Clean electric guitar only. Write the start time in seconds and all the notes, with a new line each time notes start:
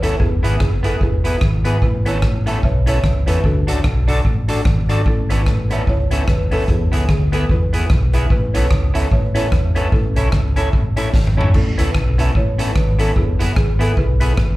0.02 B3 C#4 A4
0.43 B3 E4 G#4
0.59 muted clean electric guitar stroke
0.83 B3 E4 G#4
1.24 B3 E4 G#4
1.65 B3 E4 G#4
2.06 B3 C#4 A4
2.22 muted clean electric guitar stroke
2.46 B3 C#4 A4
2.86 B3 C#4 A4
3.27 B3 C#4 A4
3.67 D4 F#4 A4
3.84 muted clean electric guitar stroke
4.08 D4 F#4 A4
4.49 D4 F#4 A4
4.90 D4 F#4 A4
5.30 B3 C#4 A4
5.47 muted clean electric guitar stroke
5.71 B3 C#4 A4
6.11 B3 C#4 A4
6.51 B3 C#4 A4
6.92 B3 E4 G#4
7.09 muted clean electric guitar stroke
7.32 B3 E4 G#4
7.73 B3 E4 G#4
8.14 B3 E4 G#4
8.55 B3 C#4 A4
8.71 muted clean electric guitar stroke
8.94 B3 C#4 A4
9.35 B3 C#4 A4
9.76 B3 C#4 A4
10.17 C#4 E4 A4
10.33 muted clean electric guitar stroke
10.56 C#4 E4 A4
10.97 C#4 E4 A4
11.37 C#4 E4 A4
11.78 B3 C#4 A4
11.95 muted clean electric guitar stroke
12.18 B3 C#4 A4
12.58 B3 C#4 A4
12.99 B3 C#4 A4
13.39 B3 E4 G#4
13.56 muted clean electric guitar stroke
13.79 B3 E4 G#4
14.21 B3 E4 G#4